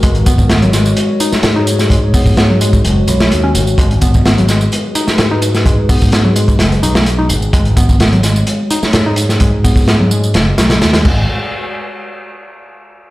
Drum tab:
CC |----------------|----------------|----------------|----------------|
HH |xxx-xxx-x-x-x-x-|x-o-x-x-x-x-x-x-|xxx-xxx-x-x-x-x-|x-o-x-x-xxx-x-x-|
TB |x-xxx-xxx-xxx-xx|x-xxx-xxx-xxx-xx|x-xxx-xxx-xxx-xx|x-xxx-xxx-xxx-xx|
SD |----o-o----oo--o|----o------o----|----o-o----oo--o|----o---o--o----|
BD |o-oo------------|o-oo---o--------|o-oo------------|o-oo---o--------|

CC |----------------|--------------x-|----------------|
HH |xxx-xxx-x-x-x-x-|x-o-x---x-xxxx--|----------------|
TB |x-xxx-xxx-xxx-xx|x-xxx-xxx-xxx---|----------------|
SD |----o-o----oo--o|----o---o-oooo--|----------------|
BD |o-oo------------|o-oo----------o-|----------------|